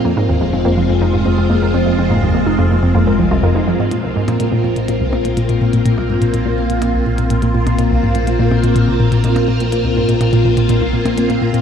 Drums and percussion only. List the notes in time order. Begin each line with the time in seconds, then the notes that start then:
3.91 closed hi-hat
4.28 closed hi-hat, percussion blips
4.40 closed hi-hat
4.76 closed hi-hat
4.88 closed hi-hat
5.13 percussion blips
5.25 closed hi-hat
5.37 closed hi-hat
5.49 closed hi-hat
5.73 closed hi-hat
5.86 closed hi-hat
5.98 percussion blips
6.22 closed hi-hat
6.34 closed hi-hat
6.70 closed hi-hat
6.82 closed hi-hat, percussion blips
7.18 closed hi-hat
7.30 closed hi-hat
7.42 closed hi-hat
7.67 closed hi-hat, percussion blips
7.79 closed hi-hat
8.15 closed hi-hat
8.27 closed hi-hat
8.51 percussion blips
8.64 closed hi-hat
8.76 closed hi-hat
9.12 closed hi-hat
9.24 closed hi-hat
9.36 closed hi-hat, percussion blips
9.60 closed hi-hat
9.72 closed hi-hat
10.09 closed hi-hat
10.21 closed hi-hat, percussion blips
10.33 closed hi-hat
10.57 closed hi-hat
10.69 closed hi-hat
11.06 closed hi-hat, percussion blips
11.18 closed hi-hat
11.30 closed hi-hat
11.54 closed hi-hat